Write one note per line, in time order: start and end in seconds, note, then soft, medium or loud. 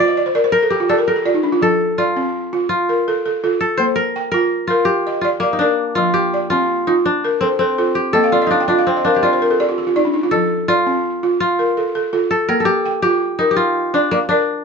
0.00 0.35 F4 medium
0.00 0.16 D5 medium
0.00 1.09 D5 medium
0.00 0.45 F5 loud
0.08 0.25 D#5 medium
0.17 0.34 D5 medium
0.26 0.43 C5 medium
0.35 0.52 A#4 medium
0.35 0.52 D5 medium
0.44 0.61 C5 medium
0.52 0.95 A#4 medium
0.52 0.70 A#4 medium
0.63 0.79 A4 medium
0.70 2.12 G4 medium
0.70 0.88 G4 medium
0.80 0.97 F4 medium
0.89 0.95 A4 medium
0.89 1.06 A4 medium
0.89 1.24 D5 medium
0.98 1.15 A#4 medium
1.08 1.24 A4 medium
1.08 1.68 A#4 medium
1.16 1.33 G4 medium
1.25 1.42 F4 medium
1.25 1.62 D5 medium
1.34 1.51 D#4 medium
1.43 1.60 D4 medium
1.53 1.70 F4 medium
1.62 1.98 F3 medium
1.62 2.94 A4 loud
1.98 2.69 F4 medium
1.98 2.53 D5 medium
2.17 2.53 C4 medium
2.53 2.89 F4 medium
2.69 4.21 F4 medium
2.89 3.43 A#4 medium
3.08 3.24 A4 medium
3.26 3.43 A4 medium
3.44 3.98 F4 medium
3.44 3.80 A4 medium
3.61 4.02 A4 medium
3.77 4.16 A#3 medium
3.77 3.83 C5 loud
3.96 4.31 A#4 loud
4.16 4.70 G5 medium
4.32 4.70 F4 medium
4.32 5.59 A#4 loud
4.67 5.21 F4 medium
4.67 5.07 A#4 medium
4.85 6.13 G4 medium
5.07 5.61 D#5 medium
5.21 5.27 F4 medium
5.21 5.42 D5 medium
5.40 7.33 A#3 medium
5.40 5.60 D5 medium
5.53 5.65 D#4 medium
5.59 6.93 D4 medium
5.59 6.15 A#4 medium
5.59 5.97 D5 medium
5.95 6.34 F3 medium
5.95 6.50 F4 loud
6.14 7.55 G4 loud
6.34 6.88 D5 medium
6.50 6.88 C4 medium
6.50 8.01 F4 medium
6.87 6.93 D#4 medium
6.87 7.24 F4 medium
7.06 8.50 D4 medium
7.25 7.79 A#4 medium
7.41 7.47 C4 medium
7.41 7.59 A4 medium
7.59 8.86 C4 medium
7.59 7.77 A4 medium
7.78 8.33 F4 medium
7.78 8.15 A4 medium
7.95 9.16 G4 medium
8.13 8.51 A#3 medium
8.13 9.45 A4 loud
8.13 8.32 D#5 medium
8.24 8.41 F5 medium
8.32 9.22 F4 medium
8.32 8.50 D5 medium
8.42 8.59 D#5 medium
8.47 8.67 D4 medium
8.47 8.57 D#4 medium
8.52 8.68 F5 medium
8.60 8.77 G5 medium
8.68 9.04 D4 medium
8.68 9.06 F4 medium
8.68 8.86 D#5 medium
8.79 8.95 F5 medium
8.87 10.67 C4 medium
8.87 9.04 G5 medium
8.97 9.13 D#5 medium
9.05 10.73 D4 medium
9.05 9.41 A#4 medium
9.05 9.22 F5 medium
9.15 10.58 G4 medium
9.15 9.32 D#5 medium
9.23 10.68 F4 medium
9.23 9.40 D5 medium
9.33 9.50 C5 medium
9.42 9.59 A#4 medium
9.51 9.67 A4 medium
9.60 9.77 G4 medium
9.60 9.95 D5 medium
9.69 9.86 F4 medium
9.78 9.95 G4 medium
9.87 10.04 F4 medium
9.96 10.12 D#4 medium
9.96 10.32 D5 medium
10.05 10.22 D4 medium
10.14 10.31 D#4 medium
10.23 10.40 F4 medium
10.31 10.68 F3 medium
10.31 11.63 A4 loud
10.68 11.40 F4 medium
10.68 11.23 D5 medium
10.87 11.23 C4 medium
11.23 11.59 F4 medium
11.40 12.92 F4 medium
11.59 12.13 A#4 medium
11.77 11.94 A4 medium
11.95 12.12 A4 medium
12.13 12.67 F4 medium
12.13 12.49 A4 medium
12.31 12.55 A4 medium
12.49 12.86 A#3 medium
12.49 12.66 A#4 loud
12.60 13.92 A4 medium
12.65 13.02 G4 loud
12.86 13.40 G5 medium
13.02 13.40 F4 medium
13.02 13.50 G4 loud
13.39 14.00 D#4 medium
13.39 13.76 A#4 medium
13.51 14.64 G4 medium
13.56 14.64 F4 medium
13.94 14.28 D4 medium
13.94 14.11 D5 medium
14.11 14.17 A#3 medium
14.11 14.29 D5 medium
14.29 14.64 D4 medium
14.29 14.64 A#4 medium
14.29 14.64 D5 medium